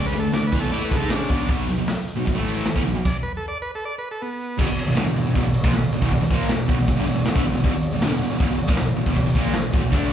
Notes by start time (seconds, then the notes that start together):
Already playing: C#3 G#3 C#4
0.06 B4
0.14 D3 A3, open hi-hat, tambourine
0.19 A4
0.33 D3 A3 D5, snare, open hi-hat, tambourine
0.47 B4
0.52 E3 B3, kick, open hi-hat, tambourine
0.60 B2 F#3 A4
0.72 A3 E4 A4 D5, open hi-hat, tambourine
0.84 B4
0.91 C#3 G#3, kick, open hi-hat
0.96 G#3 A4
1.01 D#4
1.10 C#3 G#3 C#4 D4, snare, open hi-hat, tambourine
1.29 B2 F#3 B3, kick, open hi-hat, tambourine
1.48 B2 F#3 B3, kick, open hi-hat
1.69 B2 F#3, open hi-hat, tambourine
1.78 B2 F#3
1.88 muted distorted electric guitar stroke, snare, open hi-hat, tambourine
2.08 open hi-hat, tambourine
2.16 B2 F#3
2.26 B2 F#3, kick, open hi-hat, tambourine
2.35 A2 E3 A3
2.48 open hi-hat
2.65 muted distorted electric guitar stroke, snare, open hi-hat, tambourine
2.76 E3 B3, kick
2.85 B2 F#3, open hi-hat, tambourine
2.95 B2 F#3
3.05 D5, kick, crash
3.23 B4
3.37 A4
3.48 D5
3.62 B4
3.75 A4
3.85 D5
3.98 B4
4.11 A4
4.22 B3
4.58 E2 B2, kick, crash
4.68 muted distorted electric guitar stroke
4.79 crash
4.87 E2 B2
4.95 G2 D3, snare, crash
5.06 E2 B2
5.16 E2 B2, crash
5.26 E2 B2
5.34 E2 B2, kick, crash
5.45 E2 B2
5.54 muted distorted electric guitar stroke, crash
5.63 A#2 F3, kick
5.73 E2 B2, snare, crash
5.82 muted distorted electric guitar stroke
5.92 E2 B2, crash
6.01 E2 B2, kick
6.10 E2 B2, kick, crash
6.20 E2 B2
6.30 A#2 F3 A#3, kick, crash
6.49 E2 B2, snare, crash
6.67 E2 B2, kick, crash
6.78 E2 B2
6.87 E2 B2, kick, crash
6.96 G2 D3
7.06 E2 B2, crash
7.16 E2 B2
7.25 E2 B2, snare, crash
7.35 D3 A3, kick
7.44 E2 B2, crash
7.53 E2 B2
7.63 E2 B2, kick, crash
7.74 muted distorted electric guitar stroke
7.83 crash
7.93 E2 B2
8.02 G2 D3, snare, tambourine, crash
8.12 E2 B2
8.22 E2 B2, crash
8.31 E2 B2
8.40 E2 B2, kick, crash
8.49 E2 B2
8.57 muted distorted electric guitar stroke, crash
8.67 A#2 F3, kick
8.77 E2 B2, snare, tambourine, crash
8.87 muted distorted electric guitar stroke
8.96 E2 B2, crash
9.06 E2 B2, kick
9.16 E2 B2, kick, crash
9.26 E2 B2
9.35 A#2 F3 A#3, kick, crash
9.54 E2 B2, snare, tambourine, crash
9.73 E2 B2, kick, crash
9.84 E2 B2
9.92 D3 A3 D4, kick, crash